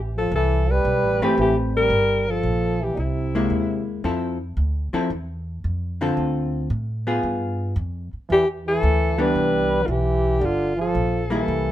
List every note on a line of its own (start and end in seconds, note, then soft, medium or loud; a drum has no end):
0.00 0.31 A1 medium
0.17 0.32 F3 medium
0.17 0.33 A4 loud
0.31 0.84 C2 medium
0.31 0.72 E3 medium
0.31 0.73 A4 loud
0.71 1.24 G3 medium
0.71 1.26 B4 loud
0.85 1.03 B1 medium
1.03 1.20 A1 medium
1.20 1.37 G1 medium
1.20 1.38 E3 medium
1.20 1.89 A3 medium
1.20 1.89 C4 medium
1.20 1.89 G4 medium
1.20 1.89 B4 medium
1.24 1.40 G4 medium
1.37 1.89 A1 medium
1.37 1.55 E3 medium
1.37 1.57 G4 medium
1.75 2.30 G3 medium
1.75 2.32 A#4 loud
1.90 2.43 G1 medium
2.28 2.83 F3 medium
2.28 2.85 A4 medium
2.43 2.96 A#1 medium
2.81 2.93 E3 medium
2.81 2.95 G4 medium
2.94 3.49 C2 medium
2.94 2.99 A#2 soft
2.94 3.87 C3 medium
2.94 3.01 D#4 medium
2.99 3.88 E4 medium
3.35 4.02 G#3 medium
3.35 4.02 A#3 medium
3.35 4.02 E4 medium
3.50 4.02 D#2 medium
4.04 4.56 F2 medium
4.04 4.37 F3 medium
4.04 4.37 C4 medium
4.04 4.38 E4 medium
4.04 4.38 A4 medium
4.57 4.91 D2 medium
4.93 5.09 F3 medium
4.93 5.09 C4 medium
4.93 5.09 E4 medium
4.93 5.09 A4 medium
4.93 muted upright bass stroke soft
5.10 5.62 E2 medium
5.64 6.16 F2 medium
6.01 6.67 D3 medium
6.01 6.68 C4 medium
6.01 6.68 F4 medium
6.01 6.68 A4 medium
6.17 6.69 D2 medium
6.70 7.22 A2 medium
7.07 7.73 B3 medium
7.07 7.74 F4 medium
7.07 7.74 G#4 medium
7.23 7.75 G2 medium
7.76 8.10 F2 medium
8.13 muted upright bass stroke soft
8.29 8.81 E2 medium
8.29 8.45 E3 medium
8.29 8.48 G4 loud
8.66 9.20 E3 medium
8.66 9.23 A4 loud
8.83 9.34 D2 medium
9.18 9.85 E3 medium
9.18 9.85 G3 loud
9.18 9.85 B3 medium
9.18 9.86 D4 medium
9.18 9.88 B4 loud
9.35 9.87 C2 medium
9.83 9.90 D3 medium
9.83 9.92 F4 medium
9.88 10.40 B1 medium
9.88 10.42 E3 medium
9.88 10.46 G4 loud
10.41 10.93 G1 medium
10.41 10.76 D3 medium
10.45 10.80 F4 loud
10.76 11.27 F3 medium
10.81 11.29 A4 medium
10.95 11.46 A#1 medium
11.30 11.72 E3 medium
11.30 11.72 G3 medium
11.30 11.72 A#3 medium
11.30 11.72 E4 medium
11.30 11.72 A4 medium
11.48 11.72 C2 medium